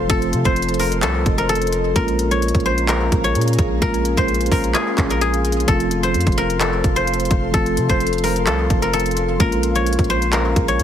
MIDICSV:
0, 0, Header, 1, 6, 480
1, 0, Start_track
1, 0, Key_signature, -5, "minor"
1, 0, Tempo, 465116
1, 100, Time_signature, 4, 2, 24, 8
1, 11179, End_track
2, 0, Start_track
2, 0, Title_t, "Ambient pad"
2, 0, Program_c, 0, 92
2, 0, Note_on_c, 0, 69, 85
2, 0, Note_on_c, 0, 72, 77
2, 0, Note_on_c, 0, 84, 92
2, 100, Note_on_c, 0, 75, 75
2, 1982, Note_off_c, 0, 69, 0
2, 1982, Note_off_c, 0, 72, 0
2, 1982, Note_off_c, 0, 84, 0
2, 2001, Note_off_c, 0, 75, 0
2, 2020, Note_on_c, 0, 61, 75
2, 2020, Note_on_c, 0, 68, 82
2, 2020, Note_on_c, 0, 77, 76
2, 2020, Note_on_c, 0, 82, 91
2, 3921, Note_off_c, 0, 82, 0
2, 3941, Note_on_c, 0, 84, 93
2, 5822, Note_off_c, 0, 61, 0
2, 5822, Note_off_c, 0, 68, 0
2, 5841, Note_off_c, 0, 84, 0
2, 5860, Note_on_c, 0, 69, 83
2, 5861, Note_on_c, 0, 72, 76
2, 5861, Note_on_c, 0, 84, 93
2, 9662, Note_off_c, 0, 69, 0
2, 9662, Note_off_c, 0, 72, 0
2, 9662, Note_off_c, 0, 84, 0
2, 9701, Note_on_c, 0, 61, 74
2, 9701, Note_on_c, 0, 68, 82
2, 9701, Note_on_c, 0, 82, 92
2, 11179, Note_off_c, 0, 61, 0
2, 11179, Note_off_c, 0, 68, 0
2, 11179, Note_off_c, 0, 77, 0
2, 11179, Note_off_c, 0, 82, 0
2, 11179, End_track
3, 0, Start_track
3, 0, Title_t, "Guzheng"
3, 0, Program_c, 1, 107
3, 0, Note_on_c, 1, 72, 75
3, 98, Note_on_c, 1, 69, 106
3, 463, Note_off_c, 1, 72, 0
3, 468, Note_on_c, 1, 72, 81
3, 820, Note_on_c, 1, 70, 78
3, 882, Note_off_c, 1, 69, 0
3, 1061, Note_on_c, 1, 69, 95
3, 1123, Note_off_c, 1, 70, 0
3, 1425, Note_on_c, 1, 70, 74
3, 1487, Note_off_c, 1, 69, 0
3, 1540, Note_on_c, 1, 69, 91
3, 1602, Note_off_c, 1, 70, 0
3, 2021, Note_on_c, 1, 70, 105
3, 2083, Note_off_c, 1, 69, 0
3, 2387, Note_on_c, 1, 73, 74
3, 2449, Note_off_c, 1, 72, 0
3, 2741, Note_on_c, 1, 72, 83
3, 2803, Note_off_c, 1, 73, 0
3, 2975, Note_off_c, 1, 70, 0
3, 2979, Note_on_c, 1, 70, 86
3, 3345, Note_on_c, 1, 73, 74
3, 3407, Note_off_c, 1, 72, 0
3, 3937, Note_off_c, 1, 70, 0
3, 3941, Note_on_c, 1, 70, 109
3, 4313, Note_on_c, 1, 72, 84
3, 4374, Note_off_c, 1, 73, 0
3, 4661, Note_off_c, 1, 70, 0
3, 4665, Note_on_c, 1, 70, 75
3, 4897, Note_on_c, 1, 68, 91
3, 5265, Note_off_c, 1, 70, 0
3, 5269, Note_on_c, 1, 70, 74
3, 5376, Note_off_c, 1, 68, 0
3, 5380, Note_on_c, 1, 68, 88
3, 5861, Note_on_c, 1, 69, 100
3, 5923, Note_off_c, 1, 68, 0
3, 5923, Note_off_c, 1, 70, 0
3, 6221, Note_off_c, 1, 72, 0
3, 6225, Note_on_c, 1, 72, 73
3, 6580, Note_on_c, 1, 70, 90
3, 6642, Note_off_c, 1, 69, 0
3, 6818, Note_on_c, 1, 69, 86
3, 6880, Note_off_c, 1, 70, 0
3, 7180, Note_off_c, 1, 72, 0
3, 7184, Note_on_c, 1, 72, 75
3, 7774, Note_off_c, 1, 69, 0
3, 7778, Note_on_c, 1, 69, 107
3, 8144, Note_off_c, 1, 72, 0
3, 8148, Note_on_c, 1, 72, 81
3, 8500, Note_on_c, 1, 70, 81
3, 8562, Note_off_c, 1, 69, 0
3, 8741, Note_on_c, 1, 69, 93
3, 8803, Note_off_c, 1, 70, 0
3, 9104, Note_on_c, 1, 70, 76
3, 9166, Note_off_c, 1, 69, 0
3, 9220, Note_on_c, 1, 69, 91
3, 9282, Note_off_c, 1, 70, 0
3, 9701, Note_on_c, 1, 70, 101
3, 9763, Note_off_c, 1, 69, 0
3, 10067, Note_on_c, 1, 73, 75
3, 10129, Note_off_c, 1, 72, 0
3, 10421, Note_on_c, 1, 72, 83
3, 10483, Note_off_c, 1, 73, 0
3, 10655, Note_off_c, 1, 70, 0
3, 10659, Note_on_c, 1, 70, 83
3, 11025, Note_on_c, 1, 73, 78
3, 11086, Note_off_c, 1, 72, 0
3, 11179, Note_off_c, 1, 70, 0
3, 11179, Note_off_c, 1, 73, 0
3, 11179, End_track
4, 0, Start_track
4, 0, Title_t, "Tine electric piano"
4, 0, Program_c, 2, 4
4, 0, Control_c, 2, 64, 127
4, 0, Note_on_c, 2, 53, 68
4, 0, Note_on_c, 2, 57, 64
4, 0, Note_on_c, 2, 60, 55
4, 0, Note_on_c, 2, 65, 71
4, 77, Note_off_c, 2, 53, 0
4, 77, Note_on_c, 2, 53, 69
4, 92, Note_off_c, 2, 57, 0
4, 92, Note_on_c, 2, 57, 65
4, 107, Note_off_c, 2, 60, 0
4, 107, Note_on_c, 2, 60, 58
4, 122, Note_off_c, 2, 65, 0
4, 122, Note_on_c, 2, 65, 80
4, 1970, Note_off_c, 2, 53, 0
4, 1978, Note_off_c, 2, 57, 0
4, 1986, Note_off_c, 2, 60, 0
4, 1993, Note_off_c, 2, 65, 0
4, 2002, Note_on_c, 2, 56, 67
4, 2017, Note_on_c, 2, 58, 64
4, 2032, Note_on_c, 2, 61, 64
4, 2033, Control_c, 2, 64, 0
4, 2047, Note_on_c, 2, 65, 82
4, 2222, Control_c, 2, 64, 127
4, 3892, Note_off_c, 2, 56, 0
4, 3900, Note_off_c, 2, 58, 0
4, 3908, Note_off_c, 2, 61, 0
4, 3915, Note_off_c, 2, 65, 0
4, 3917, Note_on_c, 2, 56, 68
4, 3932, Note_on_c, 2, 58, 57
4, 3947, Note_on_c, 2, 61, 61
4, 3962, Note_on_c, 2, 65, 76
4, 5810, Note_off_c, 2, 56, 0
4, 5818, Note_off_c, 2, 58, 0
4, 5825, Note_off_c, 2, 61, 0
4, 5833, Note_off_c, 2, 65, 0
4, 5846, Note_on_c, 2, 53, 68
4, 5861, Note_on_c, 2, 57, 65
4, 5875, Control_c, 2, 64, 0
4, 5876, Note_on_c, 2, 60, 57
4, 5891, Note_on_c, 2, 65, 71
4, 6059, Control_c, 2, 64, 127
4, 7735, Note_off_c, 2, 53, 0
4, 7743, Note_off_c, 2, 57, 0
4, 7750, Note_off_c, 2, 60, 0
4, 7758, Note_off_c, 2, 65, 0
4, 7758, Note_on_c, 2, 53, 68
4, 7772, Note_on_c, 2, 57, 65
4, 7787, Note_on_c, 2, 60, 62
4, 7802, Note_on_c, 2, 65, 80
4, 9650, Note_off_c, 2, 53, 0
4, 9658, Note_off_c, 2, 57, 0
4, 9666, Note_off_c, 2, 60, 0
4, 9673, Note_off_c, 2, 65, 0
4, 9682, Note_on_c, 2, 56, 69
4, 9697, Note_on_c, 2, 58, 62
4, 9711, Note_on_c, 2, 61, 66
4, 9715, Control_c, 2, 64, 0
4, 9726, Note_on_c, 2, 65, 81
4, 9895, Control_c, 2, 64, 127
4, 11179, Note_off_c, 2, 56, 0
4, 11179, Note_off_c, 2, 58, 0
4, 11179, Note_off_c, 2, 61, 0
4, 11179, Note_off_c, 2, 65, 0
4, 11179, End_track
5, 0, Start_track
5, 0, Title_t, "808-style bass"
5, 0, Program_c, 3, 38
5, 100, Note_on_c, 3, 29, 108
5, 340, Note_on_c, 3, 48, 99
5, 356, Note_off_c, 3, 29, 0
5, 461, Note_off_c, 3, 48, 0
5, 468, Note_on_c, 3, 29, 109
5, 1060, Note_on_c, 3, 36, 99
5, 1076, Note_off_c, 3, 29, 0
5, 1288, Note_off_c, 3, 36, 0
5, 1300, Note_on_c, 3, 29, 103
5, 1992, Note_off_c, 3, 29, 0
5, 2020, Note_on_c, 3, 34, 116
5, 2603, Note_off_c, 3, 34, 0
5, 2627, Note_on_c, 3, 34, 103
5, 3197, Note_off_c, 3, 34, 0
5, 3220, Note_on_c, 3, 34, 101
5, 3461, Note_on_c, 3, 46, 104
5, 3476, Note_off_c, 3, 34, 0
5, 3689, Note_off_c, 3, 46, 0
5, 3701, Note_on_c, 3, 34, 104
5, 3931, Note_off_c, 3, 34, 0
5, 3940, Note_on_c, 3, 34, 112
5, 4293, Note_off_c, 3, 34, 0
5, 4308, Note_on_c, 3, 34, 103
5, 4646, Note_off_c, 3, 34, 0
5, 4660, Note_on_c, 3, 34, 104
5, 4891, Note_off_c, 3, 34, 0
5, 5140, Note_on_c, 3, 34, 101
5, 5832, Note_off_c, 3, 34, 0
5, 5861, Note_on_c, 3, 29, 106
5, 6341, Note_on_c, 3, 41, 103
5, 6356, Note_off_c, 3, 29, 0
5, 6461, Note_off_c, 3, 41, 0
5, 6468, Note_on_c, 3, 29, 104
5, 7037, Note_off_c, 3, 29, 0
5, 7060, Note_on_c, 3, 29, 102
5, 7521, Note_off_c, 3, 29, 0
5, 7541, Note_on_c, 3, 29, 103
5, 7771, Note_off_c, 3, 29, 0
5, 7780, Note_on_c, 3, 29, 111
5, 8021, Note_on_c, 3, 48, 98
5, 8036, Note_off_c, 3, 29, 0
5, 8141, Note_off_c, 3, 48, 0
5, 8148, Note_on_c, 3, 29, 106
5, 8741, Note_on_c, 3, 36, 102
5, 8756, Note_off_c, 3, 29, 0
5, 8969, Note_off_c, 3, 36, 0
5, 8980, Note_on_c, 3, 29, 98
5, 9672, Note_off_c, 3, 29, 0
5, 9701, Note_on_c, 3, 34, 113
5, 10283, Note_off_c, 3, 34, 0
5, 10308, Note_on_c, 3, 34, 99
5, 10877, Note_off_c, 3, 34, 0
5, 10901, Note_on_c, 3, 34, 102
5, 11140, Note_on_c, 3, 46, 103
5, 11156, Note_off_c, 3, 34, 0
5, 11179, Note_off_c, 3, 46, 0
5, 11179, End_track
6, 0, Start_track
6, 0, Title_t, "Drums"
6, 100, Note_on_c, 9, 36, 112
6, 100, Note_on_c, 9, 42, 81
6, 203, Note_off_c, 9, 42, 0
6, 204, Note_off_c, 9, 36, 0
6, 228, Note_on_c, 9, 42, 61
6, 331, Note_off_c, 9, 42, 0
6, 340, Note_on_c, 9, 42, 82
6, 444, Note_off_c, 9, 42, 0
6, 467, Note_on_c, 9, 42, 67
6, 468, Note_on_c, 9, 36, 93
6, 571, Note_off_c, 9, 36, 0
6, 571, Note_off_c, 9, 42, 0
6, 581, Note_on_c, 9, 42, 65
6, 644, Note_off_c, 9, 42, 0
6, 644, Note_on_c, 9, 42, 57
6, 708, Note_off_c, 9, 42, 0
6, 708, Note_on_c, 9, 42, 47
6, 764, Note_off_c, 9, 42, 0
6, 764, Note_on_c, 9, 42, 38
6, 821, Note_on_c, 9, 46, 79
6, 867, Note_off_c, 9, 42, 0
6, 924, Note_off_c, 9, 46, 0
6, 948, Note_on_c, 9, 42, 57
6, 1051, Note_off_c, 9, 42, 0
6, 1060, Note_on_c, 9, 39, 120
6, 1060, Note_on_c, 9, 42, 82
6, 1163, Note_off_c, 9, 39, 0
6, 1164, Note_off_c, 9, 42, 0
6, 1300, Note_on_c, 9, 36, 100
6, 1300, Note_on_c, 9, 42, 79
6, 1404, Note_off_c, 9, 36, 0
6, 1404, Note_off_c, 9, 42, 0
6, 1428, Note_on_c, 9, 42, 62
6, 1531, Note_off_c, 9, 42, 0
6, 1540, Note_on_c, 9, 42, 79
6, 1604, Note_off_c, 9, 42, 0
6, 1604, Note_on_c, 9, 42, 67
6, 1668, Note_off_c, 9, 42, 0
6, 1668, Note_on_c, 9, 42, 58
6, 1724, Note_off_c, 9, 42, 0
6, 1724, Note_on_c, 9, 42, 49
6, 1780, Note_off_c, 9, 42, 0
6, 1780, Note_on_c, 9, 42, 75
6, 1884, Note_off_c, 9, 42, 0
6, 2020, Note_on_c, 9, 36, 114
6, 2020, Note_on_c, 9, 42, 79
6, 2123, Note_off_c, 9, 42, 0
6, 2124, Note_off_c, 9, 36, 0
6, 2147, Note_on_c, 9, 42, 60
6, 2251, Note_off_c, 9, 42, 0
6, 2260, Note_on_c, 9, 42, 86
6, 2363, Note_off_c, 9, 42, 0
6, 2387, Note_on_c, 9, 42, 64
6, 2490, Note_off_c, 9, 42, 0
6, 2500, Note_on_c, 9, 42, 62
6, 2564, Note_off_c, 9, 42, 0
6, 2564, Note_on_c, 9, 42, 54
6, 2627, Note_off_c, 9, 42, 0
6, 2627, Note_on_c, 9, 36, 94
6, 2627, Note_on_c, 9, 42, 46
6, 2684, Note_off_c, 9, 42, 0
6, 2684, Note_on_c, 9, 42, 38
6, 2731, Note_off_c, 9, 36, 0
6, 2787, Note_off_c, 9, 42, 0
6, 2867, Note_on_c, 9, 42, 59
6, 2971, Note_off_c, 9, 42, 0
6, 2979, Note_on_c, 9, 39, 125
6, 2980, Note_on_c, 9, 42, 84
6, 3083, Note_off_c, 9, 39, 0
6, 3083, Note_off_c, 9, 42, 0
6, 3220, Note_on_c, 9, 36, 97
6, 3220, Note_on_c, 9, 42, 83
6, 3324, Note_off_c, 9, 36, 0
6, 3324, Note_off_c, 9, 42, 0
6, 3348, Note_on_c, 9, 42, 61
6, 3451, Note_off_c, 9, 42, 0
6, 3460, Note_on_c, 9, 42, 78
6, 3524, Note_off_c, 9, 42, 0
6, 3524, Note_on_c, 9, 42, 67
6, 3588, Note_off_c, 9, 42, 0
6, 3588, Note_on_c, 9, 42, 58
6, 3644, Note_off_c, 9, 42, 0
6, 3644, Note_on_c, 9, 42, 47
6, 3700, Note_off_c, 9, 42, 0
6, 3700, Note_on_c, 9, 42, 75
6, 3701, Note_on_c, 9, 36, 101
6, 3804, Note_off_c, 9, 36, 0
6, 3804, Note_off_c, 9, 42, 0
6, 3940, Note_on_c, 9, 36, 112
6, 3940, Note_on_c, 9, 42, 80
6, 4043, Note_off_c, 9, 42, 0
6, 4044, Note_off_c, 9, 36, 0
6, 4068, Note_on_c, 9, 42, 61
6, 4171, Note_off_c, 9, 42, 0
6, 4180, Note_on_c, 9, 42, 83
6, 4284, Note_off_c, 9, 42, 0
6, 4307, Note_on_c, 9, 42, 67
6, 4308, Note_on_c, 9, 36, 93
6, 4411, Note_off_c, 9, 36, 0
6, 4411, Note_off_c, 9, 42, 0
6, 4420, Note_on_c, 9, 42, 55
6, 4484, Note_off_c, 9, 42, 0
6, 4484, Note_on_c, 9, 42, 53
6, 4548, Note_off_c, 9, 42, 0
6, 4548, Note_on_c, 9, 42, 52
6, 4604, Note_off_c, 9, 42, 0
6, 4604, Note_on_c, 9, 42, 52
6, 4660, Note_on_c, 9, 36, 97
6, 4660, Note_on_c, 9, 46, 80
6, 4707, Note_off_c, 9, 42, 0
6, 4763, Note_off_c, 9, 36, 0
6, 4764, Note_off_c, 9, 46, 0
6, 4788, Note_on_c, 9, 42, 57
6, 4891, Note_off_c, 9, 42, 0
6, 4900, Note_on_c, 9, 39, 123
6, 4900, Note_on_c, 9, 42, 83
6, 5003, Note_off_c, 9, 39, 0
6, 5004, Note_off_c, 9, 42, 0
6, 5140, Note_on_c, 9, 36, 99
6, 5140, Note_on_c, 9, 42, 81
6, 5141, Note_on_c, 9, 39, 93
6, 5244, Note_off_c, 9, 36, 0
6, 5244, Note_off_c, 9, 39, 0
6, 5244, Note_off_c, 9, 42, 0
6, 5268, Note_on_c, 9, 42, 60
6, 5371, Note_off_c, 9, 42, 0
6, 5381, Note_on_c, 9, 42, 78
6, 5484, Note_off_c, 9, 42, 0
6, 5508, Note_on_c, 9, 42, 65
6, 5611, Note_off_c, 9, 42, 0
6, 5621, Note_on_c, 9, 42, 65
6, 5700, Note_off_c, 9, 42, 0
6, 5700, Note_on_c, 9, 42, 65
6, 5780, Note_off_c, 9, 42, 0
6, 5780, Note_on_c, 9, 42, 63
6, 5860, Note_on_c, 9, 36, 111
6, 5861, Note_off_c, 9, 42, 0
6, 5861, Note_on_c, 9, 42, 77
6, 5964, Note_off_c, 9, 36, 0
6, 5964, Note_off_c, 9, 42, 0
6, 5988, Note_on_c, 9, 42, 60
6, 6091, Note_off_c, 9, 42, 0
6, 6100, Note_on_c, 9, 42, 84
6, 6204, Note_off_c, 9, 42, 0
6, 6228, Note_on_c, 9, 42, 64
6, 6331, Note_off_c, 9, 42, 0
6, 6341, Note_on_c, 9, 42, 63
6, 6404, Note_off_c, 9, 42, 0
6, 6404, Note_on_c, 9, 42, 55
6, 6467, Note_off_c, 9, 42, 0
6, 6467, Note_on_c, 9, 42, 46
6, 6468, Note_on_c, 9, 36, 94
6, 6524, Note_off_c, 9, 42, 0
6, 6524, Note_on_c, 9, 42, 38
6, 6571, Note_off_c, 9, 36, 0
6, 6627, Note_off_c, 9, 42, 0
6, 6708, Note_on_c, 9, 42, 56
6, 6811, Note_off_c, 9, 42, 0
6, 6820, Note_on_c, 9, 39, 121
6, 6820, Note_on_c, 9, 42, 82
6, 6923, Note_off_c, 9, 39, 0
6, 6924, Note_off_c, 9, 42, 0
6, 7060, Note_on_c, 9, 36, 101
6, 7061, Note_on_c, 9, 42, 79
6, 7164, Note_off_c, 9, 36, 0
6, 7164, Note_off_c, 9, 42, 0
6, 7188, Note_on_c, 9, 42, 63
6, 7291, Note_off_c, 9, 42, 0
6, 7301, Note_on_c, 9, 42, 82
6, 7364, Note_off_c, 9, 42, 0
6, 7364, Note_on_c, 9, 42, 66
6, 7428, Note_off_c, 9, 42, 0
6, 7428, Note_on_c, 9, 42, 57
6, 7484, Note_off_c, 9, 42, 0
6, 7484, Note_on_c, 9, 42, 47
6, 7540, Note_off_c, 9, 42, 0
6, 7540, Note_on_c, 9, 42, 75
6, 7541, Note_on_c, 9, 36, 104
6, 7644, Note_off_c, 9, 36, 0
6, 7644, Note_off_c, 9, 42, 0
6, 7780, Note_on_c, 9, 36, 114
6, 7780, Note_on_c, 9, 42, 76
6, 7884, Note_off_c, 9, 36, 0
6, 7884, Note_off_c, 9, 42, 0
6, 7908, Note_on_c, 9, 42, 60
6, 8011, Note_off_c, 9, 42, 0
6, 8020, Note_on_c, 9, 42, 87
6, 8124, Note_off_c, 9, 42, 0
6, 8148, Note_on_c, 9, 36, 95
6, 8148, Note_on_c, 9, 42, 65
6, 8251, Note_off_c, 9, 36, 0
6, 8251, Note_off_c, 9, 42, 0
6, 8261, Note_on_c, 9, 42, 65
6, 8324, Note_off_c, 9, 42, 0
6, 8324, Note_on_c, 9, 42, 55
6, 8388, Note_off_c, 9, 42, 0
6, 8388, Note_on_c, 9, 42, 45
6, 8444, Note_off_c, 9, 42, 0
6, 8444, Note_on_c, 9, 42, 37
6, 8501, Note_on_c, 9, 46, 81
6, 8547, Note_off_c, 9, 42, 0
6, 8604, Note_off_c, 9, 46, 0
6, 8628, Note_on_c, 9, 42, 58
6, 8731, Note_off_c, 9, 42, 0
6, 8740, Note_on_c, 9, 39, 123
6, 8741, Note_on_c, 9, 42, 80
6, 8843, Note_off_c, 9, 39, 0
6, 8844, Note_off_c, 9, 42, 0
6, 8980, Note_on_c, 9, 36, 103
6, 8980, Note_on_c, 9, 42, 80
6, 9084, Note_off_c, 9, 36, 0
6, 9084, Note_off_c, 9, 42, 0
6, 9108, Note_on_c, 9, 42, 62
6, 9211, Note_off_c, 9, 42, 0
6, 9221, Note_on_c, 9, 42, 80
6, 9284, Note_off_c, 9, 42, 0
6, 9284, Note_on_c, 9, 42, 70
6, 9348, Note_off_c, 9, 42, 0
6, 9348, Note_on_c, 9, 42, 58
6, 9404, Note_off_c, 9, 42, 0
6, 9404, Note_on_c, 9, 42, 48
6, 9460, Note_off_c, 9, 42, 0
6, 9460, Note_on_c, 9, 42, 78
6, 9563, Note_off_c, 9, 42, 0
6, 9700, Note_on_c, 9, 36, 112
6, 9700, Note_on_c, 9, 42, 81
6, 9803, Note_off_c, 9, 42, 0
6, 9804, Note_off_c, 9, 36, 0
6, 9828, Note_on_c, 9, 42, 62
6, 9931, Note_off_c, 9, 42, 0
6, 9940, Note_on_c, 9, 42, 86
6, 10044, Note_off_c, 9, 42, 0
6, 10067, Note_on_c, 9, 42, 63
6, 10171, Note_off_c, 9, 42, 0
6, 10180, Note_on_c, 9, 42, 66
6, 10244, Note_off_c, 9, 42, 0
6, 10244, Note_on_c, 9, 42, 57
6, 10308, Note_off_c, 9, 42, 0
6, 10308, Note_on_c, 9, 36, 92
6, 10308, Note_on_c, 9, 42, 48
6, 10364, Note_off_c, 9, 42, 0
6, 10364, Note_on_c, 9, 42, 39
6, 10411, Note_off_c, 9, 36, 0
6, 10467, Note_off_c, 9, 42, 0
6, 10548, Note_on_c, 9, 42, 57
6, 10651, Note_off_c, 9, 42, 0
6, 10660, Note_on_c, 9, 39, 120
6, 10660, Note_on_c, 9, 42, 83
6, 10763, Note_off_c, 9, 39, 0
6, 10764, Note_off_c, 9, 42, 0
6, 10901, Note_on_c, 9, 36, 98
6, 10901, Note_on_c, 9, 42, 80
6, 11004, Note_off_c, 9, 36, 0
6, 11004, Note_off_c, 9, 42, 0
6, 11028, Note_on_c, 9, 42, 59
6, 11131, Note_off_c, 9, 42, 0
6, 11141, Note_on_c, 9, 42, 79
6, 11179, Note_off_c, 9, 42, 0
6, 11179, End_track
0, 0, End_of_file